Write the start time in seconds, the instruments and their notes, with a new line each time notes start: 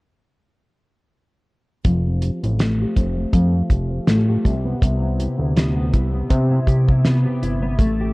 1.85 analog synth bass F1, nylon-string guitar F3, kick, closed hi-hat
2.06 nylon-string guitar C4
2.22 nylon-string guitar G4, closed hi-hat
2.42 analog synth bass A1, nylon-string guitar C4, closed hi-hat
2.59 nylon-string guitar A3, snare, closed hi-hat
2.81 nylon-string guitar G4
2.96 analog synth bass F1, nylon-string guitar C4, kick, closed hi-hat
3.17 nylon-string guitar A3
3.32 analog synth bass F2, nylon-string guitar F3, kick, closed hi-hat
3.54 nylon-string guitar C4
3.70 analog synth bass F1, nylon-string guitar G4, kick, closed hi-hat
3.90 nylon-string guitar C4
4.07 analog synth bass A1, nylon-string guitar A3, snare, closed hi-hat
4.29 nylon-string guitar G4
4.44 analog synth bass C2, nylon-string guitar C3, kick, closed hi-hat
4.64 nylon-string guitar B3
4.82 analog synth bass C2, nylon-string guitar C3, kick, closed hi-hat
5.01 nylon-string guitar E4
5.18 nylon-string guitar G4, closed hi-hat
5.37 analog synth bass D2, nylon-string guitar E4
5.56 nylon-string guitar B3, snare, closed hi-hat
5.76 nylon-string guitar G4
5.93 analog synth bass C2, nylon-string guitar E4, kick, closed hi-hat
6.13 nylon-string guitar B3
6.29 nylon-string guitar C3, analog synth bass C3, kick, closed hi-hat
6.50 nylon-string guitar E4
6.67 analog synth bass C2, nylon-string guitar G4, kick, closed hi-hat
6.88 nylon-string guitar E4, kick
7.05 nylon-string guitar B3, snare, closed hi-hat
7.25 nylon-string guitar G4
7.42 analog synth bass G1, nylon-string guitar E4, closed hi-hat
7.62 nylon-string guitar B3
7.79 analog synth bass A1, nylon-string guitar A3, kick, closed hi-hat
8.00 nylon-string guitar G4